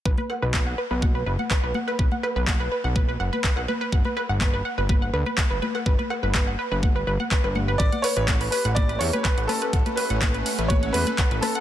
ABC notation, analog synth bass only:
X:1
M:4/4
L:1/16
Q:1/4=124
K:Bm
V:1 name="Analog synth bass" clef=bass
B,,, z2 B,,,3 z B,,,3 F,,, z2 B,,, z2 | B,,, z2 B,,,3 z B,,,3 F,,, z2 B,,, z2 | G,,, z2 G,,,3 z G,,,3 D,, z2 G,,, z2 | G,,, z2 G,,,3 z G,,,3 G,,, z2 G,,,3 |
A,,, z2 A,,,3 z A,,,3 E,, z2 A,,, z2 | A,,, z2 A,,,3 z A,,,3 E,, z2 A,,, z2 |]